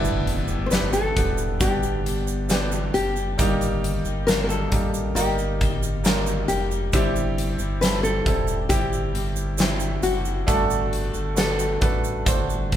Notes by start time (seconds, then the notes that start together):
Already playing: G1 G2 D3 E3 G3 B3 D4 E4 G4, impact
0.04 shaker
0.27 closed hi-hat
0.48 G1 G3 B3 D4 G4, shaker
0.66 C5
0.71 G2 E3 G3 B3 D4 G4 B4, snare, closed hi-hat, shaker
0.93 G3 B3 D4 G4 A4, closed hi-hat, shaker
1.16 E1 G3 B3 D4 G4, kick, closed hi-hat
1.38 shaker
1.59 G1 G3 B3 D4 G4, kick, closed hi-hat, shaker
1.82 G3 B3 D4 G4, shaker
2.05 G3 B3 D4 G4, closed hi-hat
2.28 shaker
2.49 G2 E3 G3 B3 D4 G4, snare, closed hi-hat, shaker
2.72 shaker
2.94 F#1 G3 B3 D4 G4, closed hi-hat, shaker
3.16 G3 B3 D4 G4, shaker
3.38 G1 G2 D#3 G3 A#3 D#4 G4, kick, closed hi-hat, shaker
3.61 closed hi-hat, shaker
3.84 closed hi-hat
4.05 G1 A#3 D#4 G4, shaker
4.09 G3
4.27 G2 D#3 G3 A#3 D#4 G4 A#4, snare, closed hi-hat, shaker
4.44 A#4
4.49 A4, shaker
4.71 A1 G3 A#3 D#4 G4, kick, closed hi-hat
4.94 shaker
5.15 G1 G3 A#3 D#4 G4 A#4, closed hi-hat, shaker
5.19 G4
5.38 G3 A#3 D#4 G4, shaker
5.60 G3 A#3 D#4 G4, kick, closed hi-hat
5.83 shaker
6.03 G2 D#3 G3 A#3 D#4 G4 A#4, snare, closed hi-hat, shaker
6.27 shaker
6.48 F1 G3 A#3 D#4 G4, closed hi-hat, shaker
6.52 G4
6.70 G3 A#3 D#4 G4, shaker
6.93 G1 G2 E3 G3 C4 E4 G4, kick, closed hi-hat, shaker
7.16 shaker
7.38 closed hi-hat
7.59 G1 C4 E4 G4, shaker
7.63 G3
7.81 G2 E3 G3 C4 E4 G4 A4 B4, snare, closed hi-hat, shaker
8.03 A4, shaker
8.26 E1 G3 C4 E4 A4, kick, closed hi-hat
8.47 G3 C4 E4 G4, shaker
8.69 G1 G3 C4 E4 G4, kick, closed hi-hat, shaker
8.92 G3 C4 E4 G4, shaker
9.13 G3 C4 E4 G4, closed hi-hat
9.36 shaker
9.58 G2 E3 G3 C4 E4 G4, snare, closed hi-hat, shaker
9.80 shaker
10.03 F#1 G3 C4 E4 F#4 G4, closed hi-hat, shaker
10.25 G3 C4 E4 G4, shaker
10.47 G1 G2 D3 G3 A3 D4 F#4 A4, kick, closed hi-hat, shaker
10.70 shaker
10.93 closed hi-hat
11.13 G1 G3 D4 F#4 A4, shaker
11.35 G2 D3 G3 A3 D4 F#4 A4 B4, snare, closed hi-hat, shaker
11.39 A4
11.58 G3 D4 F#4 A4, closed hi-hat, shaker
11.80 A1 A3 D4 F#4 A4 B4, kick, closed hi-hat
12.04 shaker
12.25 G1 G3 A3 D4 F#4 A4 C5, kick, closed hi-hat, shaker
12.48 G3 D4 F#4 A4, shaker
12.71 G3 D4, kick, closed hi-hat